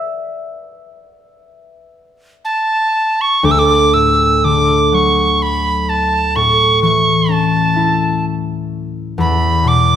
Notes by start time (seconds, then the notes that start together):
Already playing: D5 E5
2.45 A5
3.21 C#6
3.43 D2 D6
3.51 E6
3.59 D6
3.94 A2 E6
4.44 D3 D6
4.92 F#3 C#6
5.42 B5
5.89 A5
6.36 A2 C#6
6.82 E3 C#6
7.29 C#4 A5
7.76 E4
9.18 E2 B5
9.64 B2
9.68 D6